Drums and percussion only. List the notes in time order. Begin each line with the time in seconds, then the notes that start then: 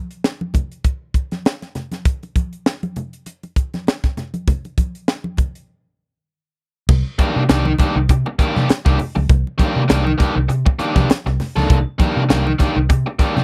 0.11 closed hi-hat
0.24 snare, muted conga
0.41 muted conga, high conga
0.54 kick, closed hi-hat, low conga
0.72 closed hi-hat
0.84 kick, closed hi-hat
1.14 kick, closed hi-hat
1.31 snare, closed hi-hat, high conga
1.45 snare, muted conga
1.62 snare, closed hi-hat, muted conga
1.75 snare, closed hi-hat, low conga
1.92 snare, closed hi-hat, high conga
2.05 kick, closed hi-hat, muted conga
2.23 closed hi-hat, muted conga
2.36 kick, closed hi-hat, high conga
2.53 closed hi-hat
2.66 snare, muted conga
2.83 closed hi-hat, muted conga, high conga
2.96 closed hi-hat, low conga
3.13 closed hi-hat
3.26 closed hi-hat, muted conga
3.43 closed hi-hat, muted conga
3.56 kick, closed hi-hat
3.74 snare, closed hi-hat, high conga
3.87 snare, muted conga
4.04 kick, snare, closed hi-hat, muted conga
4.17 snare, closed hi-hat, low conga
4.34 closed hi-hat, high conga
4.48 kick, closed hi-hat, muted conga, low conga
4.65 closed hi-hat, muted conga
4.78 kick, closed hi-hat, high conga
4.95 closed hi-hat
5.08 snare, muted conga
5.24 high conga
5.37 kick, closed hi-hat, low conga
5.55 closed hi-hat
6.89 kick, crash, muted conga, low conga
7.19 kick, closed hi-hat, high conga
7.49 snare, closed hi-hat
7.65 muted conga, high conga
7.78 kick, closed hi-hat, low conga
8.09 kick, closed hi-hat, muted conga
8.26 muted conga
8.39 kick, closed hi-hat
8.56 snare, high conga
8.69 snare, closed hi-hat
8.86 kick, snare, muted conga
8.99 open hi-hat, low conga
9.16 high conga
9.29 kick, closed hi-hat, low conga
9.47 muted conga
9.59 kick, closed hi-hat, high conga
9.90 snare, closed hi-hat, muted conga
10.07 muted conga, high conga
10.20 kick, closed hi-hat, low conga
10.50 closed hi-hat
10.66 kick, muted conga
10.79 closed hi-hat
10.96 kick, snare, high conga
11.10 snare, closed hi-hat
11.27 snare, muted conga
11.40 snare, open hi-hat, low conga
11.56 snare, high conga
11.70 kick, closed hi-hat, muted conga, low conga
12.00 kick, closed hi-hat, high conga
12.30 snare, closed hi-hat
12.47 muted conga, high conga
12.59 kick, closed hi-hat, low conga
12.90 kick, closed hi-hat, muted conga
13.19 kick, closed hi-hat
13.37 snare, high conga